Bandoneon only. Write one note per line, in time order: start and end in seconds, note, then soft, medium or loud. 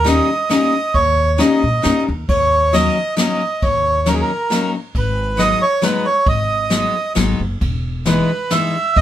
0.08 0.49 D#5 medium
0.51 0.96 D#5 medium
0.95 1.40 C#5 medium
1.40 2.04 D#5 medium
2.29 2.75 C#5 medium
2.74 3.15 D#5 medium
3.19 3.65 D#5 medium
3.63 4.09 C#5 medium
4.08 4.14 A#4 medium
4.14 4.22 G#4 medium
4.21 4.70 A#4 medium
4.98 5.42 B4 medium
5.39 5.62 D#5 loud
5.62 5.83 C#5 loud
5.83 6.07 B4 medium
6.06 6.28 C#5 medium
6.29 7.13 D#5 medium
8.07 8.53 B4 medium
8.52 8.97 E5 medium
8.97 9.02 D#5 loud